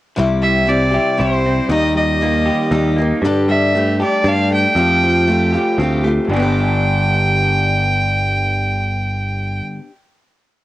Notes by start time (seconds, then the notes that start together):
0.16 C2 C3 G3 C4 E4 G4
0.42 G3 E5
0.66 G3 C4 E4 G4 D5
0.91 C4 E4 G4
1.18 C2 G3 C4 E4 G4 C5
1.46 C4
1.69 D#2 D#3 G3 A#3 D#4 G4 D#5
1.95 G3 D#5
2.21 G3 A#3 D#4 G4
2.46 G4
2.71 D#2 G3 A#3 D#4 G4
2.96 A#3 D#4 G4
3.02 A#3
3.22 G2 D3 G3 D4 A4
3.26 G4
3.48 G3 E5
3.75 G3 A3 D4 G4 A4
4.00 G3 D4 G4 A4 D5
4.24 G2 G3 D4 G4 A4 F5
4.51 A3 G5
4.75 F2 F3 A3 C4 F4 G4
5.04 F3
5.27 A3 C4 F4
5.32 G4
5.54 C4 F4 G4
5.78 D2 A3 C4 F4
5.83 G4
6.04 A3 C4 F4 G4
6.25 G1 G2
6.29 D3 B3 D4 G4 G5
6.33 G3 B3
6.40 D4 G4